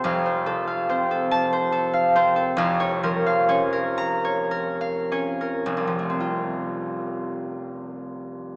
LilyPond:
<<
  \new Staff \with { instrumentName = "Harp" } { \time 6/8 \key f \major \tempo 4. = 41 << { a''4. a''4. | r4. bes''4. | <f,, c, f a c' f'>2. | } \\ { <a' c'' f''>16 c''16 a'16 f''16 c''16 a'8 c''16 a'16 f''16 c''16 a'16 | f''16 des''16 bes'16 f''16 des''16 bes'8 des''16 bes'16 f''16 des''16 bes'16 | r2. | } >> }
  \new Staff \with { instrumentName = "Harp" } { \clef bass \time 6/8 \key f \major <f,, f, c'>8 c8 c'4. c'8 | <f,, f,>8 f8 des'4. des'8 | r2. | }
>>